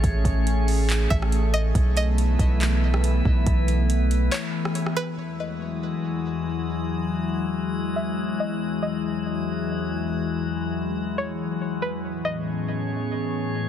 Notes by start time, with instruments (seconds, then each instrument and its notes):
Already playing: ambient pad A3 C#4 G#4, synth texture A3 G#4 C#5
0.04 808-style bass A1, kick, closed hi-hat
0.25 808-style bass A1, kick, closed hi-hat
0.47 closed hi-hat
0.68 open hi-hat
0.90 clap, closed hi-hat
1.10 808-style bass A1, synth pluck E5, kick
1.22 cross-stick
1.32 closed hi-hat
1.54 synth pluck D#5
1.75 808-style bass B1, ambient pad E3 B3, synth texture E4 B4, kick, closed hi-hat
1.97 synth pluck D#5, closed hi-hat
2.18 closed hi-hat
2.39 808-style bass B1, kick, closed hi-hat
2.61 clap, closed hi-hat
2.94 cross-stick
3.04 closed hi-hat
3.25 808-style bass B1, kick
3.46 808-style bass B1, kick, closed hi-hat
3.68 closed hi-hat
3.90 closed hi-hat
4.11 closed hi-hat
4.32 synth pluck C#5, clap, closed hi-hat
4.65 cross-stick
4.75 closed hi-hat
4.86 cross-stick
4.97 synth pluck B4
5.18 ambient pad E2 E3 F#3 G#3 E4, synth texture G#3 E4 F#4 D#6
5.40 synth pluck D#5
7.96 synth pluck E5
8.40 synth pluck D#5
8.82 synth pluck D#5
11.18 synth pluck C#5
11.82 synth pluck B4
12.04 ambient pad A2 B3 C#4 G#4, synth texture A3 G#4 C#5
12.25 synth pluck D#5